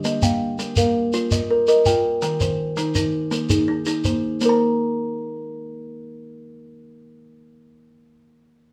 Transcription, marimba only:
X:1
M:12/8
L:1/8
Q:3/8=110
K:Eb
V:1 name="Marimba"
e f2 B f3 z2 e3 | g B2 E B2 B3 A3 | c2 z8 z2 | z12 |]
V:2 name="Marimba"
z B,2 z B,2 z B2 z F2 | z E,2 z E,2 z E2 z B,2 | [B,Bb]12- | [B,Bb]12 |]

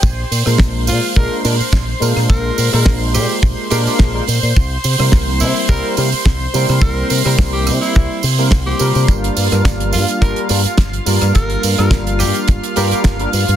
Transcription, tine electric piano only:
X:1
M:4/4
L:1/16
Q:"Swing 16ths" 1/4=106
K:Bbmix
V:1 name="Tine electric piano"
z3 [A,B,DFB]4- [A,B,DFB] [A,B,DFB]2 [A,B,DFB] z3 [A,B,DFB]2- | [A,B,DFB]3 [A,B,DFB]6- [A,B,DFB] [A,B,DFB]3 [A,B,DFB] z2 | z3 [G,B,C=EB]4- [G,B,CEB] [G,B,CEB]2 [G,B,CEB] z3 [G,B,CEB]2- | [G,B,C=EB]3 [G,B,CEB]6- [G,B,CEB] z [G,B,CEB] z [G,B,CEc] [G,B,DFB]2- |
[G,B,DFB]3 [G,B,DFB]4- [G,B,DFB] [G,B,DFB]2 [G,B,DFB] z3 [G,B,DFB]2- | [G,B,DFB]3 [G,B,DFB]6- [G,B,DFB] [G,B,DFB]3 [G,B,DFB] z2 |]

